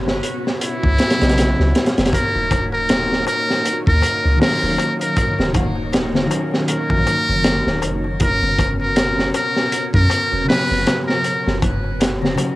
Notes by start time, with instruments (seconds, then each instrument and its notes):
Already playing: 808-style bass F#1, string machine B3 C#4 F#4 C#5
0.08 snare
0.23 closed hi-hat
0.47 snare
0.61 muted trumpet E4, closed hi-hat
0.83 808-style bass C#2, kick
0.98 snare, closed hi-hat
1.10 snare, closed hi-hat
1.18 808-style bass B1, clean electric guitar C#3 F#3 B3, snare, closed hi-hat
1.23 clean electric guitar D#5
1.29 snare, closed hi-hat
1.38 snare, closed hi-hat
1.59 808-style bass C#2, snare
1.75 snare, closed hi-hat
1.86 snare, closed hi-hat
1.98 808-style bass F#1, snare, closed hi-hat
2.05 snare, closed hi-hat
2.12 string machine A#3 D#4 C#5, muted trumpet A#4, kick, closed hi-hat, darbuka tek
2.35 808-style bass D#1, darbuka tek
2.51 kick, closed hi-hat, darbuka tek
2.73 muted trumpet A#4, darbuka tek
2.89 snare, closed hi-hat, darbuka tek
3.13 snare
3.27 muted trumpet A#4, closed hi-hat, darbuka tek
3.49 snare, darbuka tek
3.65 closed hi-hat, darbuka tek
3.87 808-style bass D#2, muted trumpet A#4, kick
4.02 closed hi-hat, darbuka tek
4.23 808-style bass C#2, darbuka tek
4.37 clean electric guitar D#3 F#3, darbuka tek
4.41 clean electric guitar A#3, muted trumpet A#4, snare, open hi-hat
4.46 clean electric guitar C#4
4.63 808-style bass D#1
4.78 closed hi-hat, darbuka tek
5.00 muted trumpet A#4, closed hi-hat, darbuka tek
5.16 kick, closed hi-hat, darbuka tek
5.39 808-style bass D#1, snare, darbuka tek
5.52 clean electric guitar D#3 F#3 A#3, kick, closed hi-hat, darbuka tek
5.57 clean electric guitar F#4
5.76 darbuka tek
5.93 snare, closed hi-hat, darbuka tek
6.14 snare, darbuka dum
6.27 clean electric guitar D#3 F#3
6.31 clean electric guitar A#3, closed hi-hat, darbuka tek
6.35 clean electric guitar C#4
6.51 snare, darbuka tek
6.68 muted trumpet A#4, closed hi-hat, darbuka tek
6.90 808-style bass A#1, kick
7.07 closed hi-hat, darbuka tek
7.29 808-style bass F#1, darbuka tek
7.44 snare, closed hi-hat, darbuka tek
7.67 808-style bass D#1, snare
7.82 808-style bass F#1, closed hi-hat, darbuka tek
8.04 darbuka tek
8.20 string machine B3 C#4 F#4 C#5, muted trumpet A#4, kick, closed hi-hat, darbuka tek
8.42 808-style bass F#1, darbuka tek
8.58 kick, closed hi-hat, darbuka tek
8.81 muted trumpet A#4, darbuka tek
8.96 snare, closed hi-hat, darbuka tek
9.19 snare
9.34 muted trumpet A#4, closed hi-hat, darbuka tek
9.56 snare, darbuka tek
9.72 closed hi-hat, darbuka tek
9.94 808-style bass F#2, muted trumpet A#4, kick
10.10 closed hi-hat, darbuka tek
10.32 808-style bass E1, darbuka tek
10.44 clean electric guitar C#3 F#3
10.48 clean electric guitar B3 C#4, muted trumpet B4, snare, open hi-hat, darbuka tek
10.71 808-style bass F#1
10.87 snare, closed hi-hat, darbuka tek
11.07 muted trumpet A#4, snare, darbuka tek
11.24 closed hi-hat, darbuka tek
11.46 808-style bass F#1, snare, darbuka tek
11.62 kick, closed hi-hat, darbuka tek
11.84 darbuka tek
12.00 snare, closed hi-hat, darbuka tek
12.22 snare, darbuka tek, darbuka dum
12.34 clean electric guitar C#3 F#3, closed hi-hat, darbuka tek
12.40 clean electric guitar B3 C#4